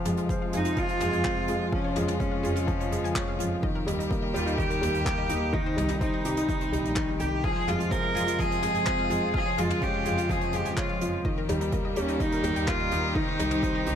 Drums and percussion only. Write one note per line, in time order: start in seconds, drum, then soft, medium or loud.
0.05 closed hi-hat medium
0.05 mid tom medium
0.17 closed hi-hat soft
0.29 kick loud
0.29 closed hi-hat medium
0.53 closed hi-hat medium
0.64 closed hi-hat medium
0.76 kick loud
0.76 closed hi-hat medium
0.88 closed hi-hat medium
1.00 closed hi-hat medium
1.00 mid tom medium
1.13 closed hi-hat soft
1.25 kick loud
1.25 clap medium
1.48 closed hi-hat medium
1.73 kick loud
1.96 closed hi-hat medium
1.96 mid tom medium
2.08 closed hi-hat medium
2.08 mid tom medium
2.20 kick loud
2.20 closed hi-hat medium
2.44 closed hi-hat medium
2.56 closed hi-hat medium
2.68 kick loud
2.68 closed hi-hat medium
2.80 closed hi-hat medium
2.92 closed hi-hat medium
3.05 closed hi-hat soft
3.16 kick loud
3.16 clap medium
3.40 closed hi-hat medium
3.63 kick loud
3.88 closed hi-hat medium
3.88 mid tom medium
4.00 closed hi-hat soft
4.11 kick loud
4.11 closed hi-hat medium
4.35 closed hi-hat medium
4.47 closed hi-hat medium
4.58 kick loud
4.58 closed hi-hat medium
4.70 closed hi-hat medium
4.83 closed hi-hat medium
4.83 mid tom medium
4.94 closed hi-hat soft
5.06 kick loud
5.06 clap medium
5.29 closed hi-hat medium
5.54 kick loud
5.78 closed hi-hat medium
5.78 mid tom medium
5.89 closed hi-hat soft
5.89 mid tom medium
6.01 kick loud
6.01 closed hi-hat medium
6.25 closed hi-hat medium
6.37 closed hi-hat medium
6.49 kick loud
6.49 closed hi-hat medium
6.61 closed hi-hat medium
6.73 closed hi-hat medium
6.85 closed hi-hat soft
6.96 kick loud
6.96 clap medium
7.20 closed hi-hat medium
7.44 kick loud
7.68 closed hi-hat medium
7.68 mid tom medium
7.80 closed hi-hat soft
7.92 kick loud
7.92 closed hi-hat medium
8.16 closed hi-hat medium
8.28 closed hi-hat medium
8.39 kick loud
8.39 closed hi-hat medium
8.52 closed hi-hat medium
8.62 closed hi-hat medium
8.62 mid tom medium
8.75 closed hi-hat soft
8.86 kick loud
8.86 clap medium
9.10 closed hi-hat medium
9.34 kick loud
9.58 closed hi-hat medium
9.58 mid tom medium
9.70 closed hi-hat soft
9.70 mid tom medium
9.82 kick loud
9.82 closed hi-hat medium
10.05 closed hi-hat medium
10.18 closed hi-hat medium
10.29 kick loud
10.29 closed hi-hat medium
10.41 closed hi-hat medium
10.53 closed hi-hat medium
10.65 closed hi-hat medium
10.77 kick loud
10.77 clap medium
11.01 closed hi-hat medium
11.25 kick loud
11.49 closed hi-hat medium
11.49 mid tom medium
11.61 closed hi-hat soft
11.72 kick loud
11.72 closed hi-hat medium
11.96 closed hi-hat medium
12.08 closed hi-hat medium
12.20 kick medium
12.20 closed hi-hat medium
12.32 closed hi-hat medium
12.44 closed hi-hat medium
12.44 mid tom medium
12.56 closed hi-hat soft
12.68 kick loud
12.68 clap medium
12.91 closed hi-hat medium
13.15 kick loud
13.39 closed hi-hat medium
13.39 mid tom medium
13.51 closed hi-hat soft
13.51 mid tom medium
13.63 kick loud
13.63 closed hi-hat medium
13.86 closed hi-hat medium